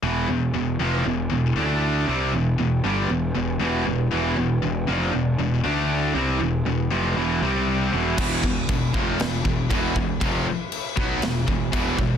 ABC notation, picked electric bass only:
X:1
M:4/4
L:1/8
Q:1/4=118
K:Ephr
V:1 name="Picked electric bass" clef=bass
E,,, E,,, E,,, F,,, E,,, E,,, D,,2 | C,, E,,, E,,, G,,, E,,, E,,, E,,, E,,, | E,,, E,,, E,,, F,,, E,,, E,,, D,,2 | C,, E,,, E,,, F,,, E,,, C,,2 E,,, |
E,,, E,,, E,,, F,,, E,,, E,,, E,,, E,,, | F,,, z2 B,,, E,,, E,,, E,,, E,,, |]